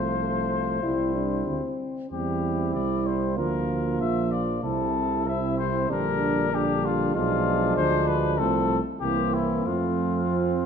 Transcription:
0.00 0.79 C2 soft
0.00 0.85 F3 soft
0.00 0.18 A3 soft
0.00 0.85 F4 soft
0.00 1.80 C5 medium
0.19 0.79 A3 soft
0.83 1.46 C2 soft
0.83 1.80 G3 soft
0.83 1.15 E4 soft
0.83 1.79 E4 soft
1.15 1.46 D4 soft
1.46 1.61 D2 soft
1.46 2.10 C4 soft
2.11 2.76 E2 soft
2.11 3.40 G3 soft
2.11 3.38 C4 soft
2.11 3.38 E4 soft
2.11 2.71 G4 soft
2.75 3.39 C2 soft
2.75 3.08 D5 soft
3.06 3.38 C5 soft
3.36 4.02 D2 soft
3.36 4.63 F3 soft
3.36 4.63 A#3 soft
3.36 4.62 F4 soft
3.36 4.00 A#4 soft
4.00 4.63 A#1 soft
4.00 4.33 E5 medium
4.31 4.63 D5 soft
4.62 5.87 C2 soft
4.62 5.26 C3 soft
4.62 5.09 C4 soft
4.62 5.25 E4 soft
4.62 5.30 A4 medium
5.25 5.91 C3 soft
5.25 5.91 C4 soft
5.25 5.91 E4 soft
5.25 5.58 E5 medium
5.58 5.89 C5 medium
5.90 7.12 A#1 soft
5.90 6.52 D3 soft
5.90 6.52 G3 soft
5.90 6.52 D4 soft
5.90 6.56 A#4 medium
6.52 7.17 D3 soft
6.52 7.17 G3 soft
6.52 7.13 D4 soft
6.52 6.86 G4 medium
6.85 7.15 F4 medium
7.15 7.76 B1 medium
7.15 8.39 F3 medium
7.15 8.41 G#3 medium
7.15 8.41 D4 medium
7.15 7.76 F4 medium
7.77 8.40 D2 soft
7.77 8.09 C5 medium
8.08 8.39 B4 medium
8.38 8.80 C2 medium
8.38 8.80 F3 medium
8.38 8.80 A3 medium
8.38 8.80 C4 soft
8.38 8.79 A4 medium
9.01 9.62 C2 soft
9.01 9.68 E3 soft
9.01 9.67 A#3 soft
9.01 9.62 C4 soft
9.01 9.35 G4 medium
9.34 9.68 E4 medium
9.65 10.66 F2 soft
9.65 10.66 F3 soft
9.65 10.23 A3 soft
9.65 10.66 C4 soft
9.65 10.66 F4 medium
10.30 10.66 F3 soft

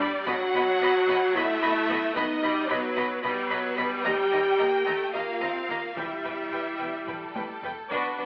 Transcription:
0.00 0.27 G3 medium
0.00 0.26 D5 medium
0.00 0.08 D5 medium
0.00 0.08 B5 medium
0.00 taiko low medium
0.26 0.35 B1 medium
0.26 0.35 B2 medium
0.26 1.33 F#3 medium
0.26 1.32 F#4 loud
0.26 0.35 D#5 medium
0.26 1.35 F#5 medium
0.26 0.34 B5 medium
0.26 taiko medium
0.54 0.62 B1 medium
0.54 0.62 B2 medium
0.54 0.63 D#5 medium
0.54 0.63 B5 medium
0.81 0.89 B1 medium
0.81 0.89 B2 medium
0.81 0.90 D#5 medium
0.81 0.90 B5 medium
1.08 1.16 B1 medium
1.08 1.16 B2 medium
1.08 1.17 D#5 medium
1.08 1.17 B5 medium
1.34 1.43 B1 medium
1.34 1.43 B2 medium
1.34 2.16 A3 medium
1.34 2.16 E4 loud
1.34 1.44 D#5 medium
1.34 2.16 E5 medium
1.34 1.44 B5 medium
1.61 1.70 B1 medium
1.61 1.70 B2 medium
1.61 1.69 D#5 medium
1.61 1.69 B5 medium
1.88 1.97 B1 medium
1.88 1.97 B2 medium
1.88 1.96 D#5 medium
1.88 1.96 B5 medium
2.15 2.24 B1 medium
2.15 2.24 B2 medium
2.15 2.43 B3 medium
2.15 2.69 D#4 medium
2.15 2.23 D#5 medium
2.15 2.69 D#5 medium
2.15 2.24 B5 medium
2.15 taiko medium
2.43 2.51 B1 medium
2.43 2.51 B2 medium
2.43 2.69 G3 medium
2.43 2.51 D#5 medium
2.43 2.51 B5 medium
2.69 2.78 B1 medium
2.69 2.78 B2 medium
2.69 3.24 F#3 medium
2.69 3.23 B3 medium
2.69 3.24 B4 medium
2.69 2.78 D#5 medium
2.69 2.77 B5 medium
2.97 3.05 B1 medium
2.97 3.05 B2 medium
2.97 3.05 D#5 medium
2.97 3.05 B5 medium
3.22 3.32 B1 medium
3.22 3.31 B2 medium
3.22 3.50 G3 medium
3.22 4.04 B3 loud
3.22 4.04 B4 medium
3.22 3.31 D#5 medium
3.22 3.30 B5 medium
3.50 3.59 B1 medium
3.50 3.59 B2 medium
3.50 3.78 F#3 medium
3.50 3.58 D#5 medium
3.50 3.58 B5 medium
3.77 3.86 B1 medium
3.77 3.87 B2 medium
3.77 4.60 G3 medium
3.77 3.85 D#5 medium
3.77 3.85 B5 medium
4.04 4.14 D#2 medium
4.04 5.15 G4 loud
4.04 4.12 D#5 medium
4.04 5.14 G5 medium
4.04 4.12 A#5 medium
4.04 taiko medium
4.32 4.41 D#2 medium
4.32 4.40 D#5 medium
4.32 4.40 A#5 soft
4.58 4.68 D#2 medium
4.58 4.87 A#3 medium
4.58 4.66 D#5 medium
4.58 4.66 A#5 medium
4.85 4.95 D#2 medium
4.85 5.14 A3 medium
4.85 4.94 D#5 medium
4.85 4.93 A#5 soft
5.13 5.22 D#2 medium
5.13 5.41 A#3 medium
5.13 5.97 F4 medium
5.13 5.21 D#5 soft
5.13 5.95 F5 medium
5.13 5.21 A#5 soft
5.41 5.49 D#2 medium
5.41 5.50 D#2 soft
5.41 5.69 C4 medium
5.41 5.49 D#5 soft
5.41 5.49 A#5 soft
5.69 5.77 D#2 medium
5.69 5.78 D#2 soft
5.69 5.97 A#3 soft
5.69 5.78 D#5 soft
5.69 5.78 A#5 soft
5.96 6.05 E1 soft
5.96 6.05 E2 medium
5.96 7.60 G3 soft
5.96 7.60 E4 medium
5.96 6.05 B4 soft
5.96 7.08 E5 medium
5.96 6.06 G5 soft
5.96 taiko medium
6.24 6.33 E1 soft
6.24 6.33 E2 soft
6.24 6.32 B4 soft
6.24 6.32 G5 soft
6.51 6.60 E1 soft
6.51 6.61 E2 soft
6.51 6.59 B4 soft
6.51 6.60 G5 soft
6.79 6.88 E1 soft
6.79 6.89 E2 soft
6.79 6.87 B4 soft
6.79 6.87 G5 soft
7.07 7.15 E1 medium
7.07 7.16 E2 soft
7.07 7.87 A4 medium
7.07 7.15 B4 soft
7.07 7.15 G5 soft
7.07 taiko low-mid medium
7.35 7.43 E1 soft
7.35 7.44 E2 soft
7.35 7.44 B4 soft
7.35 7.43 G5 soft
7.35 taiko high medium
7.63 7.71 E1 soft
7.63 7.72 E2 soft
7.63 7.72 B4 soft
7.63 7.71 G5 soft
7.63 taiko low medium
7.91 7.99 B1 soft
7.91 7.99 B2 soft
7.91 8.17 B3 soft
7.91 8.26 D4 soft
7.91 8.17 D4 soft
7.91 8.26 F#4 soft
7.91 8.17 F#4 soft
7.91 8.17 B4 soft
7.91 8.26 B4 medium
7.91 taiko medium
8.18 8.26 B1 soft
8.18 8.26 B2 soft
8.18 8.26 B3 soft
8.18 8.26 D4 soft
8.18 8.26 F#4 soft

